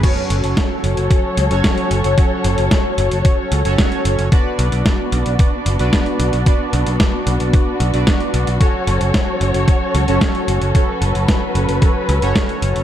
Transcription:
<<
  \new Staff \with { instrumentName = "Analog polysynth" } { \time 4/4 \key fis \minor \tempo 4 = 112 <cis' fis' a' cis''>2~ <cis' fis' a' cis''>8. <cis' fis' a' cis''>4~ <cis' fis' a' cis''>16 | <cis' fis' a' cis''>2~ <cis' fis' a' cis''>8. <cis' fis' a' cis''>4~ <cis' fis' a' cis''>16 | <d' fis' b' d''>2~ <d' fis' b' d''>8. <d' fis' b' d''>4~ <d' fis' b' d''>16 | <d' fis' b' d''>2~ <d' fis' b' d''>8. <d' fis' b' d''>4~ <d' fis' b' d''>16 |
<cis' fis' a' cis''>2~ <cis' fis' a' cis''>8. <cis' fis' a' cis''>4~ <cis' fis' a' cis''>16 | <cis' fis' a' cis''>2~ <cis' fis' a' cis''>8. <cis' fis' a' cis''>4~ <cis' fis' a' cis''>16 | }
  \new Staff \with { instrumentName = "String section" } { \time 4/4 \key fis \minor << { <fis' cis''>1~ | <fis' cis''>1 | <b fis'>1~ | <b fis'>1 |
cis''1 | b'1 | } \\ { <fis a'>1~ | <fis a'>1 | d'1~ | d'1 |
<fis a'>1~ | <fis a'>1 | } >> }
  \new Staff \with { instrumentName = "Picked electric bass" } { \clef bass \time 4/4 \key fis \minor r8 fis,,16 fis,,16 r8 fis,,16 fis,,16 r8 cis,16 fis,,16 r8 fis,,16 fis,,16 | r8 fis,,16 fis,,16 r8 fis,,16 fis,,16 r8 cis,16 fis,,16 r8 fis,,16 fis,,16 | r8 b,,16 b,,16 r8 b,,16 b,,16 r8 fis,,16 b,,16 r8 b,,16 b,,16 | r8 b,,16 b,,16 r8 b,,16 b,,16 r8 b,,16 b,,16 r8 b,,16 b,,16 |
r8 fis,,16 fis,,16 r8 fis,,16 fis,,16 r8 cis,16 fis,,16 r8 fis,,16 fis,,16 | r8 fis,,16 fis,,16 r8 fis,,16 fis,,16 r8 cis,16 fis,,16 r8 fis,,16 fis,,16 | }
  \new DrumStaff \with { instrumentName = "Drums" } \drummode { \time 4/4 <cymc hh bd>8 hh16 hh16 <hh bd sn>8 hh16 hh16 <hh bd>8 hh16 hh16 <hh bd sn>16 hh16 hh16 hh16 | <hh bd>8 hh16 hh16 <hh bd sn>8 hh16 hh16 <hh bd>8 hh16 hh16 <hh bd sn>16 hh16 hh16 hh16 | <hh bd>8 hh16 hh16 <hh bd sn>8 hh16 hh16 <hh bd>8 hh16 hh16 <hh bd sn>16 hh16 hh16 hh16 | <hh bd>8 hh16 hh16 <hh bd sn>8 hh16 hh16 <hh bd>8 hh16 hh16 <hh bd sn>16 hh16 hh16 hh16 |
<hh bd>8 hh16 hh16 <hh bd sn>8 hh16 hh16 <hh bd>8 hh16 hh16 <hh bd sn>16 hh16 hh16 hh16 | <hh bd>8 hh16 hh16 <hh bd sn>8 hh16 hh16 <hh bd>8 hh16 hh16 <hh bd sn>16 hh16 hh16 hh16 | }
>>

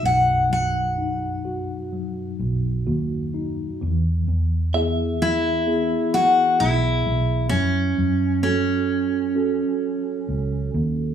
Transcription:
<<
  \new Staff \with { instrumentName = "Clean electric guitar" } { \time 4/4 \key e \major \tempo 4 = 65 r1 | r4 e''2~ e''8 r8 | r1 | }
  \new Staff \with { instrumentName = "Steel-string acoustic guitar" } { \time 4/4 \key e \major fis''8 fis''2 r4. | r4. e'4 fis'8 e'4 | cis'4 cis'2~ cis'8 r8 | }
  \new Staff \with { instrumentName = "Tine electric piano" } { \time 4/4 \key e \major <fis, dis' fis'>8 fis8 dis'8 fis'8 fis4 fis'8 dis'8 | e4 <b e' gis'>4 <b e' gis'>4 r4 | fis4 <cis' fis' a'>4 <cis' fis' a'>4 r4 | }
  \new Staff \with { instrumentName = "Fingered electric bass" } { \clef bass \time 4/4 \key e \major b,,2 r8 b,,8 dis,4 | e,8 e,2 r8 b,,8 b,,8 | fis,8 fis,2 r8 cis,8 dis,8 | }
>>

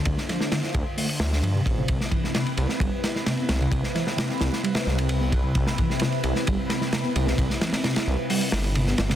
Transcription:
<<
  \new Staff \with { instrumentName = "Analog synth pad" } { \time 4/4 \key c \major \tempo 4 = 131 <d d' f' c''>1 | <c c' e' b'>1~ | <c c' e' b'>1~ | <c c' e' b'>1~ |
<c c' e' b'>1 | }
  \new Staff \with { instrumentName = "Reed electric piano" } { \clef bass \time 4/4 \key c \major d16 r16 f16 r16 d16 r8. a16 r8. f16 c16 r16 c16 | c16 r16 e16 r16 c16 r8. g16 r8. c16 b16 r16 c16 | c16 r16 e16 r16 c16 r8. g16 r8. c16 b16 r16 c16 | c16 r16 e16 r16 c16 r8. g16 r8. c16 b16 r16 c16 |
c16 r16 e16 r16 c16 r8. g16 r8. c16 b16 r16 c16 | }
  \new Staff \with { instrumentName = "Detuned saw bass" } { \clef bass \time 4/4 \key c \major d,8 r4 d,8 r8 d,8 g,8 a,,8 | c,8 r4 c,8 g,,8 r4 c,8 | c,8 r4 c,8 r8 c,4. | c,8 r4 c,8 g,,8 r4 c,8 |
c,8 r4 c,8 r8 g,,4 g,,8 | }
  \new DrumStaff \with { instrumentName = "Drums" } \drummode { \time 4/4 <bd cymr>16 sn16 <cymr sn>16 sn16 <cymr sn>16 sn16 <bd cymr>8 hho16 cymr16 <cymr sn>16 sn16 cymr8 <bd cymr>8 | <bd cymr>16 sn16 <bd cymr>16 sn16 <cymr sn>16 cymr16 cymr16 sn16 <bd cymr>8 <cymr sn>16 sn16 <cymr sn>8 <cymr sn>16 cymr16 | <bd cymr>16 sn16 <cymr sn>16 sn16 <cymr sn>16 sn16 <cymr sn>16 sn16 cymr16 <cymr sn>16 sn16 cymr16 cymr8 <bd cymr>8 | <bd cymr>16 sn16 <bd cymr>16 sn16 <cymr sn>16 cymr16 cymr16 sn16 <bd cymr>8 <cymr sn>16 sn16 <cymr sn>8 cymr16 sn16 |
<bd cymr>16 sn16 <cymr sn>16 <cymr sn>16 <cymr sn>16 <cymr sn>8. hho16 cymr16 <cymr sn>16 cymr16 cymr16 sn16 <cymr sn>16 <cymr sn>16 | }
>>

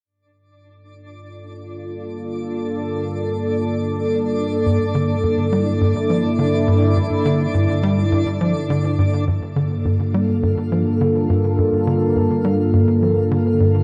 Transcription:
<<
  \new Staff \with { instrumentName = "Synth texture" } { \time 4/4 \key g \dorian \tempo 4 = 104 <d' d''>1~ | <d' d''>1~ | <d' d''>1~ | <d' d''>1 |
<f' f''>1~ | <f' f''>1 | }
  \new Staff \with { instrumentName = "Analog synth pad" } { \time 4/4 \key g \dorian << { <g, d bes a'>1~ | <g, d bes a'>1~ | <g, d bes a'>1~ | <g, d bes a'>1 |
<g, d bes a'>1~ | <g, d bes a'>1 | } \\ { f'1~ | f'1 | e'1~ | e'1 |
f'1~ | f'1 | } >> }
  \new Staff \with { instrumentName = "Analog synth bass" } { \clef bass \time 4/4 \key g \dorian r1 | r1 | g,8 d8 g,8 g8 g,8 f8 d8 g,8 | g,8 d8 g,8 g8 g,8 f8 d8 g,8 |
g,8 d8 g,8 g8 g,8 f8 d8 g,8 | g,8 d8 g,8 g8 g,8 f8 d8 g,8 | }
>>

